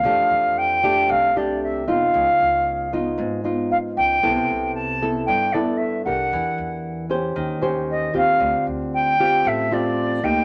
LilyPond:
<<
  \new Staff \with { instrumentName = "Flute" } { \time 4/4 \key d \minor \tempo 4 = 115 f''4 g''4 f''8 d''8 e''8 f''8~ | f''4. r4. eis''8 g''8~ | g''4 a''4 g''8 d''8 e''8 fis''8~ | fis''4. r4. ees''8 f''8~ |
f''8 r8 g''4 e''8 d''4 g''8 | }
  \new Staff \with { instrumentName = "Nylon-string guitar" } { \time 4/4 \key d \minor << { <a d' g'>4. <a d' g'>4 <a d' g'>4 <b ees' f'>8~ | <b ees' f'>4. <b dis' eis'>4 <b dis' eis'>4. | <b e' a'>4. <b e' a'>4 <b e' a'>4 <d' g' bes'>8~ | <d' g' bes'>4. <cis' g' c''>4 <des' g' c''>4 <c' f' g'>8~ |
<c' f' g'>4. <c' f' g'>4 <c' f' g'>4 <bes ees' g'>8 | } \\ { f2 c2 | cis2 gis,2 | c2 g,2 | e2 ees2 |
d2 a2 | } >> }
  \new Staff \with { instrumentName = "Upright bass" } { \clef bass \time 4/4 \key d \minor f,16 r16 f,4. c,4. f,8 | cis,16 r16 cis,4. gis,,4. cis,8 | c,16 r16 c,4. g,4. c,8 | e,16 r16 e,4. ees,4. ees,8 |
d,16 r16 d,4. a,,4. d,8 | }
>>